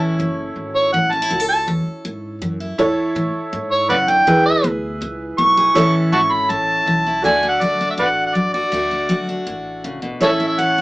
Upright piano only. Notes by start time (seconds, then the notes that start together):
Already playing: E4 A4 C#5
2.78 E4 A4 C#5
4.27 E4 G#4 B4
5.74 E4 A4 C#5
7.22 F#4 A4 D5
10.20 E4 A4 C#5